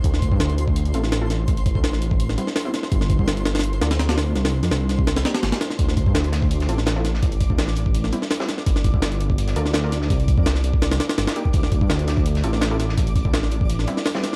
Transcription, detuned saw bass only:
X:1
M:4/4
L:1/16
Q:1/4=167
K:Dm
V:1 name="Detuned saw bass" clef=bass
D,,3 G,, D,,6 A,,,6 | A,,,3 D,, A,,,6 z6 | G,,,3 C,, G,,,6 D,,6 | C,,3 F,, C,,6 z2 G,,, z3 |
D,,3 G,, D,,6 A,,,6 | A,,,3 D,, A,,,6 z6 | G,,,3 C,, G,,,6 D,,6 | C,,3 F,, C,,6 z2 G,,, z3 |
D,,3 G,, D,,6 A,,,6 | A,,,3 D,, A,,,6 z6 |]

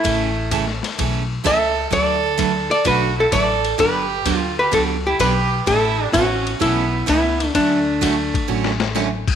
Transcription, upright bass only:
X:1
M:4/4
L:1/8
Q:"Swing" 1/4=128
K:D
V:1 name="Upright bass" clef=bass
A,,,4 B,,,2 C,,2 | D,,4 B,,,2 A,,,2 | G,,,2 D,,2 C,,2 B,,,2 | A,,,2 A,,,2 B,,,2 C,,2 |
D,,4 A,,,4 |]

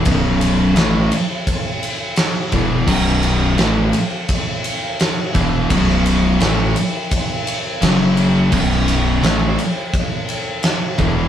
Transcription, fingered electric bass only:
X:1
M:4/4
L:1/8
Q:1/4=85
K:F#phr
V:1 name="Fingered electric bass" clef=bass
B,,,,2 A,,, z4 E,,, | B,,,,2 A,,, z4 E,,, | B,,,,2 A,,, z3 F,,,2 | B,,,,2 A,,, z4 E,,, |]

